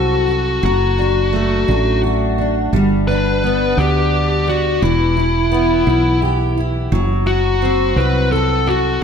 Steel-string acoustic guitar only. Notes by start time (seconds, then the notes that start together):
Already playing: F#3 C4 F#4 A4
0.28 F#4
0.63 F#3
0.98 D4
1.33 A3
1.68 D4
2.04 F#4
2.38 D4
2.73 G3
3.08 D4
3.44 B3
3.78 D4
4.47 D4
4.82 E3
5.17 E4
5.52 B3
5.87 E4
6.22 G4
6.57 E4
6.92 F#3
7.26 F#4
7.62 C4
7.97 F#4
8.32 A4
8.67 F#4